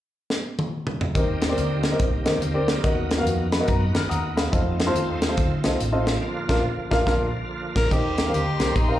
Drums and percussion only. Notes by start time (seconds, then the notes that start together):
0.30 snare
0.59 high tom
0.87 mid tom
1.01 floor tom
1.15 kick, closed hi-hat
1.41 snare, closed hi-hat
1.57 closed hi-hat
1.83 snare, closed hi-hat
1.99 kick, closed hi-hat
2.25 snare, closed hi-hat
2.42 closed hi-hat
2.68 snare, closed hi-hat
2.84 kick, closed hi-hat
3.10 snare, closed hi-hat
3.26 closed hi-hat
3.52 snare, closed hi-hat
3.67 kick, closed hi-hat
3.94 snare, closed hi-hat
4.11 closed hi-hat
4.37 snare, closed hi-hat
4.53 kick, closed hi-hat
4.79 snare, closed hi-hat
4.95 closed hi-hat
5.21 snare, closed hi-hat
5.37 kick, closed hi-hat
5.63 snare, closed hi-hat
5.80 closed hi-hat
6.07 snare, closed hi-hat
6.49 kick, snare, crash
6.91 kick, snare
7.07 kick, snare
7.76 kick, snare, crash
7.91 kick, closed hi-hat
8.18 snare, closed hi-hat
8.34 closed hi-hat
8.59 snare, closed hi-hat
8.76 kick, closed hi-hat